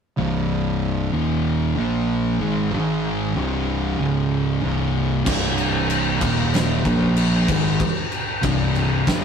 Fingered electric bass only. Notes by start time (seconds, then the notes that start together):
0.18 C1
1.12 D#1
1.76 A#1
2.40 G#1
2.72 G#1
3.36 C1
3.99 C#1
4.63 C1
5.26 C1
6.21 D#1
6.85 A#1
7.48 G#1
8.43 C1
9.07 G1